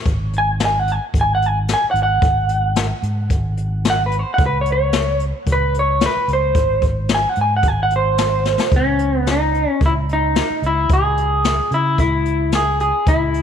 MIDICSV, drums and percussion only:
0, 0, Header, 1, 2, 480
1, 0, Start_track
1, 0, Key_signature, 4, "minor"
1, 0, Tempo, 542495
1, 46, Time_signature, 4, 2, 24, 8
1, 11875, End_track
2, 0, Start_track
2, 0, Title_t, "Drums"
2, 50, Note_on_c, 9, 36, 102
2, 50, Note_on_c, 9, 42, 79
2, 138, Note_off_c, 9, 42, 0
2, 139, Note_off_c, 9, 36, 0
2, 295, Note_on_c, 9, 42, 58
2, 383, Note_off_c, 9, 42, 0
2, 528, Note_on_c, 9, 42, 79
2, 533, Note_on_c, 9, 38, 113
2, 616, Note_off_c, 9, 42, 0
2, 622, Note_off_c, 9, 38, 0
2, 773, Note_on_c, 9, 42, 55
2, 862, Note_off_c, 9, 42, 0
2, 1007, Note_on_c, 9, 36, 79
2, 1013, Note_on_c, 9, 42, 80
2, 1095, Note_off_c, 9, 36, 0
2, 1101, Note_off_c, 9, 42, 0
2, 1257, Note_on_c, 9, 42, 55
2, 1345, Note_off_c, 9, 42, 0
2, 1488, Note_on_c, 9, 42, 81
2, 1494, Note_on_c, 9, 38, 104
2, 1577, Note_off_c, 9, 42, 0
2, 1582, Note_off_c, 9, 38, 0
2, 1728, Note_on_c, 9, 42, 59
2, 1817, Note_off_c, 9, 42, 0
2, 1965, Note_on_c, 9, 36, 114
2, 1966, Note_on_c, 9, 42, 82
2, 2053, Note_off_c, 9, 36, 0
2, 2054, Note_off_c, 9, 42, 0
2, 2201, Note_on_c, 9, 42, 62
2, 2290, Note_off_c, 9, 42, 0
2, 2441, Note_on_c, 9, 42, 86
2, 2446, Note_on_c, 9, 38, 107
2, 2529, Note_off_c, 9, 42, 0
2, 2534, Note_off_c, 9, 38, 0
2, 2682, Note_on_c, 9, 42, 64
2, 2770, Note_off_c, 9, 42, 0
2, 2920, Note_on_c, 9, 42, 82
2, 2921, Note_on_c, 9, 36, 83
2, 3008, Note_off_c, 9, 42, 0
2, 3009, Note_off_c, 9, 36, 0
2, 3160, Note_on_c, 9, 42, 64
2, 3248, Note_off_c, 9, 42, 0
2, 3401, Note_on_c, 9, 42, 83
2, 3407, Note_on_c, 9, 38, 108
2, 3490, Note_off_c, 9, 42, 0
2, 3495, Note_off_c, 9, 38, 0
2, 3641, Note_on_c, 9, 42, 63
2, 3730, Note_off_c, 9, 42, 0
2, 3877, Note_on_c, 9, 42, 85
2, 3879, Note_on_c, 9, 36, 118
2, 3966, Note_off_c, 9, 42, 0
2, 3967, Note_off_c, 9, 36, 0
2, 4118, Note_on_c, 9, 42, 62
2, 4207, Note_off_c, 9, 42, 0
2, 4357, Note_on_c, 9, 42, 83
2, 4362, Note_on_c, 9, 38, 106
2, 4445, Note_off_c, 9, 42, 0
2, 4450, Note_off_c, 9, 38, 0
2, 4596, Note_on_c, 9, 42, 57
2, 4685, Note_off_c, 9, 42, 0
2, 4837, Note_on_c, 9, 36, 86
2, 4837, Note_on_c, 9, 42, 83
2, 4925, Note_off_c, 9, 36, 0
2, 4926, Note_off_c, 9, 42, 0
2, 5080, Note_on_c, 9, 42, 64
2, 5168, Note_off_c, 9, 42, 0
2, 5314, Note_on_c, 9, 42, 83
2, 5319, Note_on_c, 9, 38, 101
2, 5402, Note_off_c, 9, 42, 0
2, 5408, Note_off_c, 9, 38, 0
2, 5558, Note_on_c, 9, 42, 58
2, 5646, Note_off_c, 9, 42, 0
2, 5793, Note_on_c, 9, 42, 85
2, 5795, Note_on_c, 9, 36, 108
2, 5881, Note_off_c, 9, 42, 0
2, 5883, Note_off_c, 9, 36, 0
2, 6034, Note_on_c, 9, 36, 79
2, 6035, Note_on_c, 9, 42, 59
2, 6122, Note_off_c, 9, 36, 0
2, 6123, Note_off_c, 9, 42, 0
2, 6269, Note_on_c, 9, 42, 79
2, 6274, Note_on_c, 9, 38, 114
2, 6358, Note_off_c, 9, 42, 0
2, 6363, Note_off_c, 9, 38, 0
2, 6508, Note_on_c, 9, 42, 61
2, 6596, Note_off_c, 9, 42, 0
2, 6749, Note_on_c, 9, 42, 85
2, 6752, Note_on_c, 9, 36, 90
2, 6838, Note_off_c, 9, 42, 0
2, 6840, Note_off_c, 9, 36, 0
2, 6993, Note_on_c, 9, 42, 70
2, 7082, Note_off_c, 9, 42, 0
2, 7237, Note_on_c, 9, 42, 93
2, 7242, Note_on_c, 9, 38, 100
2, 7325, Note_off_c, 9, 42, 0
2, 7330, Note_off_c, 9, 38, 0
2, 7480, Note_on_c, 9, 38, 65
2, 7569, Note_off_c, 9, 38, 0
2, 7605, Note_on_c, 9, 38, 90
2, 7694, Note_off_c, 9, 38, 0
2, 7712, Note_on_c, 9, 42, 76
2, 7713, Note_on_c, 9, 36, 113
2, 7800, Note_off_c, 9, 42, 0
2, 7801, Note_off_c, 9, 36, 0
2, 7953, Note_on_c, 9, 42, 55
2, 8042, Note_off_c, 9, 42, 0
2, 8197, Note_on_c, 9, 42, 75
2, 8202, Note_on_c, 9, 38, 101
2, 8286, Note_off_c, 9, 42, 0
2, 8291, Note_off_c, 9, 38, 0
2, 8443, Note_on_c, 9, 42, 53
2, 8531, Note_off_c, 9, 42, 0
2, 8679, Note_on_c, 9, 36, 84
2, 8684, Note_on_c, 9, 42, 71
2, 8768, Note_off_c, 9, 36, 0
2, 8773, Note_off_c, 9, 42, 0
2, 8928, Note_on_c, 9, 42, 54
2, 9016, Note_off_c, 9, 42, 0
2, 9161, Note_on_c, 9, 42, 76
2, 9166, Note_on_c, 9, 38, 101
2, 9250, Note_off_c, 9, 42, 0
2, 9255, Note_off_c, 9, 38, 0
2, 9406, Note_on_c, 9, 42, 58
2, 9494, Note_off_c, 9, 42, 0
2, 9640, Note_on_c, 9, 36, 101
2, 9643, Note_on_c, 9, 42, 79
2, 9729, Note_off_c, 9, 36, 0
2, 9731, Note_off_c, 9, 42, 0
2, 9887, Note_on_c, 9, 42, 58
2, 9975, Note_off_c, 9, 42, 0
2, 10123, Note_on_c, 9, 42, 79
2, 10129, Note_on_c, 9, 38, 100
2, 10212, Note_off_c, 9, 42, 0
2, 10217, Note_off_c, 9, 38, 0
2, 10365, Note_on_c, 9, 42, 55
2, 10453, Note_off_c, 9, 42, 0
2, 10602, Note_on_c, 9, 36, 82
2, 10604, Note_on_c, 9, 42, 80
2, 10691, Note_off_c, 9, 36, 0
2, 10693, Note_off_c, 9, 42, 0
2, 10843, Note_on_c, 9, 42, 64
2, 10932, Note_off_c, 9, 42, 0
2, 11077, Note_on_c, 9, 42, 88
2, 11082, Note_on_c, 9, 38, 97
2, 11165, Note_off_c, 9, 42, 0
2, 11171, Note_off_c, 9, 38, 0
2, 11324, Note_on_c, 9, 42, 59
2, 11412, Note_off_c, 9, 42, 0
2, 11560, Note_on_c, 9, 42, 89
2, 11562, Note_on_c, 9, 36, 106
2, 11648, Note_off_c, 9, 42, 0
2, 11650, Note_off_c, 9, 36, 0
2, 11802, Note_on_c, 9, 42, 58
2, 11875, Note_off_c, 9, 42, 0
2, 11875, End_track
0, 0, End_of_file